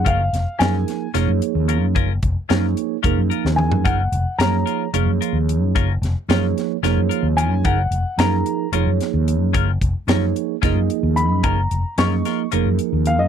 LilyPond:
<<
  \new Staff \with { instrumentName = "Grand piano" } { \time 7/8 \key fis \major \tempo 4 = 111 eis''4 gis''4 r4. | r2. gis''8 | fis''4 ais''4 r4. | r2. gis''8 |
fis''4 ais''4 r4. | r2. b''8 | ais''4 cis'''4 r4 eis''16 dis''16 | }
  \new Staff \with { instrumentName = "Clean electric guitar" } { \time 7/8 \key fis \major <cis' eis' ais'>8 r8 <cis' eis' ais'>8 r8 <cis' eis' ais'>8 r8 <cis' eis' ais'>8 | <cis' eis' ais'>8 r8 <cis' eis' ais'>8 r8 <cis' eis' ais'>8 <eis' ais'>8 r8 | <cis' eis' ais'>8 r8 <cis' eis' ais'>8 <eis' ais'>8 <cis' eis' ais'>8 <eis' ais'>8 r8 | <cis' eis' ais'>8 r8 <cis' eis' ais'>8 r8 <cis' eis' ais'>8 <eis' ais'>8 <cis' eis' ais'>8 |
<cis' eis' ais'>8 r8 <cis' eis' ais'>8 r8 <cis' eis' ais'>8 r4 | <cis' eis' ais'>8 r8 <cis' eis' ais'>8 r8 <cis' eis' ais'>8 r4 | <cis' eis' ais'>8 r8 <cis' eis' ais'>8 <eis' ais'>8 <cis' eis' ais'>8 r4 | }
  \new Staff \with { instrumentName = "Tine electric piano" } { \time 7/8 \key fis \major <eis ais dis' gis' dis''>8 r8 <eis ais dis' gis' ais'>4 <eis ais dis' gis' cis''>4. | r4 <eis ais dis' gis' cis''>4 <eis ais dis' gis' ais'>4. | r4 <eis ais dis' gis' cis''>4 <eis ais dis' gis' cis''>4. | r4 <eis ais dis' gis' cis''>4 <eis ais dis' gis' cis''>4. |
r4 <eis ais dis' gis' ais'>4 <eis ais dis' gis' cis''>4. | r4 <eis ais dis' gis' cis''>4 <eis ais dis' gis' dis''>4. | r4 <eis ais dis' gis' dis''>4 <eis ais dis' gis' ais'>4. | }
  \new Staff \with { instrumentName = "Fretless electric bass" } { \clef bass \time 7/8 \key fis \major fis,,8 eis,,16 r16 fis,8 r8 eis,,16 fis,16 r16 dis,8 fis,16 | fis,,8 eis,,16 r16 fis,8 r8 eis,,16 fis,16 r16 dis,8 fis,16 | fis,,8 eis,,16 r16 fis,8 r8 eis,,16 fis,16 r16 dis,8 fis,16 | fis,,8 eis,,16 r16 fis,8 r8 eis,,16 fis,16 r16 dis,8 fis,16 |
fis,,8 eis,,16 r16 fis,8 r8 eis,,16 fis,16 r16 dis,8 fis,16 | fis,,8 eis,,16 r16 fis,8 r8 eis,,16 fis,16 r16 dis,8 fis,16 | fis,,8 eis,,16 r16 fis,8 r8 eis,,16 fis,16 r16 dis,8 fis,16 | }
  \new DrumStaff \with { instrumentName = "Drums" } \drummode { \time 7/8 <hh bd>8 <hh sn>8 <hh sn>8 <hh sn>8 <hh sn>8 hh8 hh8 | <hh bd>8 <hh bd>8 <hh sn>8 hh8 <hh bd>8 hh16 sn16 toml16 tomfh16 | <hh bd>8 hh8 <hh sn>8 hh8 hh8 hh8 hh8 | <hh bd>8 <hh sn>8 <hh sn>8 <hh sn>8 <hh sn>8 hh8 hh8 |
<hh bd>8 hh8 <hh sn>8 hh8 hh8 <hh sn>8 hh8 | <hh bd>8 <hh bd>8 <hh sn>8 hh8 <hh bd sn>8 hh8 hh8 | <hh bd>8 hh8 <hh sn>8 <hh sn>8 hh8 hh8 hh8 | }
>>